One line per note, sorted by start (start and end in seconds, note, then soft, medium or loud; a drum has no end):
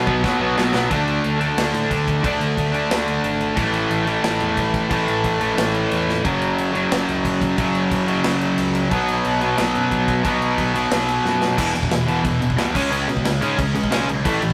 0.06 0.22 B1 medium
0.06 0.22 B2 medium
0.06 0.23 F#3 medium
0.06 0.23 B3 loud
0.06 kick loud
0.24 0.39 B1 medium
0.24 0.40 B2 loud
0.24 0.39 F#3 loud
0.24 0.39 B3 loud
0.24 kick loud
0.24 snare medium
0.40 0.55 B1 medium
0.40 0.55 B2 medium
0.40 0.56 F#3 medium
0.40 0.56 B3 loud
0.57 0.72 B1 medium
0.57 0.73 B2 medium
0.57 0.73 F#3 loud
0.57 0.72 B3 loud
0.57 snare loud
0.74 0.89 B1 medium
0.74 0.89 B2 medium
0.74 0.90 F#3 medium
0.74 0.89 B3 loud
0.74 snare loud
0.90 1.19 D2 medium
0.90 1.42 D3 medium
0.90 1.40 A3 medium
0.90 1.39 D4 loud
0.90 kick loud
0.90 crash medium
1.07 crash medium
1.24 1.52 D2 medium
1.24 crash medium
1.39 2.21 D3 medium
1.39 2.24 A3 medium
1.39 2.22 D4 medium
1.39 crash medium
1.57 1.71 D2 medium
1.57 2.22 D3 medium
1.57 2.25 A3 medium
1.57 2.24 D4 medium
1.57 snare loud
1.57 crash medium
1.74 1.88 A2 medium
1.74 crash medium
1.91 2.18 D2 medium
1.91 kick medium
1.91 crash medium
2.08 kick medium
2.08 crash medium
2.23 2.38 D2 medium
2.23 2.72 D3 medium
2.23 2.73 A3 medium
2.23 2.71 D4 loud
2.23 kick loud
2.23 crash medium
2.41 2.54 D2 medium
2.41 crash medium
2.57 2.85 D2 medium
2.57 kick medium
2.57 crash medium
2.72 3.55 D3 medium
2.72 3.56 A3 medium
2.72 3.56 D4 medium
2.72 crash medium
2.90 3.18 D2 medium
2.90 3.56 D3 medium
2.90 3.57 A3 medium
2.90 3.57 D4 medium
2.90 snare loud
2.90 crash medium
3.08 crash medium
3.23 3.51 G#1 medium
3.23 crash medium
3.41 crash medium
3.55 3.85 A1 medium
3.55 4.08 A2 medium
3.55 4.07 E3 medium
3.55 4.05 A3 loud
3.55 kick loud
3.55 crash medium
3.74 crash medium
3.91 4.18 A1 medium
3.91 crash medium
4.06 4.89 A2 medium
4.06 4.90 E3 medium
4.06 4.89 A3 medium
4.06 crash medium
4.23 4.38 A1 medium
4.23 4.88 A2 medium
4.23 4.89 E3 medium
4.23 4.90 A3 medium
4.23 snare loud
4.23 crash medium
4.40 4.55 E2 medium
4.40 crash medium
4.57 4.85 A1 medium
4.57 kick medium
4.57 crash medium
4.74 kick medium
4.74 crash medium
4.90 5.05 A1 medium
4.90 5.40 A2 medium
4.90 5.40 E3 loud
4.90 5.39 A3 loud
4.90 kick loud
4.90 crash medium
5.08 5.22 A1 medium
5.08 crash medium
5.24 5.52 A1 medium
5.24 kick medium
5.24 crash medium
5.40 6.24 A2 medium
5.40 6.24 E3 medium
5.40 6.23 A3 medium
5.40 crash medium
5.56 5.85 A1 medium
5.56 6.23 A2 medium
5.56 6.24 E3 medium
5.56 6.24 A3 medium
5.56 snare loud
5.56 crash medium
5.74 crash medium
5.91 6.19 E2 medium
5.91 crash medium
6.09 snare medium
6.23 6.53 F#1 loud
6.23 6.75 F#2 medium
6.23 6.74 C#3 medium
6.23 6.72 F#3 medium
6.23 kick loud
6.23 crash medium
6.42 crash medium
6.58 6.86 F#1 medium
6.58 crash medium
6.73 7.55 F#2 medium
6.73 7.57 C#3 medium
6.73 7.59 F#3 medium
6.73 crash medium
6.90 7.06 F#1 medium
6.90 7.56 F#2 medium
6.90 7.57 C#3 medium
6.90 7.59 F#3 medium
6.90 snare loud
6.90 crash medium
7.08 7.22 C#2 medium
7.08 crash medium
7.25 7.52 F#1 medium
7.25 kick medium
7.25 crash medium
7.42 kick medium
7.42 crash medium
7.57 7.72 F#1 loud
7.57 8.06 F#2 medium
7.57 8.07 C#3 medium
7.57 8.06 F#3 medium
7.57 kick loud
7.57 crash medium
7.75 7.88 F#1 medium
7.75 crash medium
7.91 8.19 F#1 loud
7.91 kick medium
7.91 crash medium
8.06 8.91 F#2 medium
8.06 8.90 C#3 medium
8.06 8.92 F#3 medium
8.06 crash medium
8.24 8.53 F#1 medium
8.24 8.90 F#2 medium
8.24 8.90 C#3 medium
8.24 8.92 F#3 medium
8.24 snare loud
8.24 crash medium
8.41 crash medium
8.58 8.86 C#2 medium
8.58 crash medium
8.75 crash medium
8.90 9.19 B1 loud
8.90 9.43 B2 loud
8.90 9.42 F#3 medium
8.90 9.41 B3 loud
8.90 kick loud
8.90 crash medium
9.08 crash medium
9.24 9.53 B1 medium
9.24 crash medium
9.41 10.22 B2 medium
9.41 10.24 F#3 medium
9.41 10.26 B3 medium
9.41 crash medium
9.57 9.72 B1 medium
9.57 10.23 B2 medium
9.57 10.24 F#3 medium
9.57 10.26 B3 medium
9.57 snare loud
9.57 crash medium
9.75 9.89 F#2 medium
9.75 crash medium
9.91 10.19 B1 medium
9.91 kick medium
9.91 crash medium
10.08 kick medium
10.08 crash medium
10.23 10.39 B1 medium
10.23 10.73 B2 medium
10.23 10.74 F#3 loud
10.23 10.72 B3 loud
10.23 kick loud
10.23 crash medium
10.42 10.55 B1 medium
10.42 crash medium
10.58 10.86 B1 medium
10.58 kick medium
10.58 crash medium
10.74 11.56 B2 medium
10.74 11.57 F#3 medium
10.74 11.57 B3 medium
10.74 crash medium
10.90 11.19 B1 medium
10.90 11.56 B2 medium
10.90 11.57 F#3 medium
10.90 11.57 B3 medium
10.90 snare loud
10.90 crash medium
11.09 crash medium
11.25 11.52 F#2 medium
11.25 snare medium
11.42 snare medium
11.57 11.73 E1 medium
11.57 11.73 E2 medium
11.57 11.73 B2 medium
11.57 11.74 E3 medium
11.57 kick loud
11.57 crash loud
11.57 crash medium
11.74 11.89 E1 medium
11.74 11.89 E2 medium
11.74 11.89 B2 medium
11.74 crash medium
11.83 kick medium
11.90 12.05 E2 medium
11.90 12.06 E2 medium
11.90 12.06 B2 medium
11.90 snare loud
11.90 crash medium
12.07 12.22 E1 medium
12.07 12.22 E2 loud
12.07 12.23 B2 medium
12.07 12.23 E3 loud
12.07 crash medium
12.24 12.54 E1 medium
12.24 12.39 E2 medium
12.24 12.39 B2 medium
12.24 12.75 E3 loud
12.24 kick loud
12.24 crash medium
12.41 12.55 E2 medium
12.41 12.56 B2 medium
12.41 crash medium
12.50 kick medium
12.57 12.72 C2 medium
12.57 12.73 E2 medium
12.57 12.73 B2 medium
12.57 12.73 E3 medium
12.57 snare loud
12.57 crash medium
12.73 12.90 C#2 medium
12.73 12.89 C#3 medium
12.73 12.89 G#3 medium
12.73 12.90 C#4 medium
12.73 kick loud
12.73 crash loud
12.90 13.06 C#2 medium
12.90 13.06 C#3 medium
12.90 13.07 G#3 loud
12.90 13.07 C#4 medium
12.90 crash medium
13.07 13.23 B2 medium
13.07 13.23 C#3 medium
13.07 13.23 G#3 medium
13.07 crash medium
13.17 kick medium
13.25 13.40 C#2 medium
13.25 13.40 C#3 medium
13.25 13.40 G#3 medium
13.25 snare loud
13.25 crash medium
13.41 13.57 G#2 medium
13.41 13.57 C#3 medium
13.41 13.57 G#3 medium
13.41 13.58 C#4 loud
13.41 crash medium
13.58 13.73 C#2 medium
13.58 13.73 C#3 medium
13.58 13.73 G#3 medium
13.58 kick loud
13.58 crash medium
13.74 13.90 C#2 medium
13.74 13.90 C#3 medium
13.74 13.90 G#3 medium
13.74 crash medium
13.84 kick medium
13.91 14.06 B1 medium
13.91 14.06 C#3 medium
13.91 14.07 G#3 medium
13.91 14.07 C#4 medium
13.91 snare loud
13.91 crash medium
14.08 14.24 B1 medium
14.08 14.23 C#3 medium
14.08 14.23 G#3 medium
14.08 crash medium
14.25 14.40 A1 loud
14.25 14.41 A2 medium
14.25 14.41 E3 medium
14.25 14.41 A3 loud
14.25 kick loud
14.25 crash medium
14.42 14.53 A1 loud
14.42 14.53 A2 medium
14.42 14.53 E3 medium
14.42 crash medium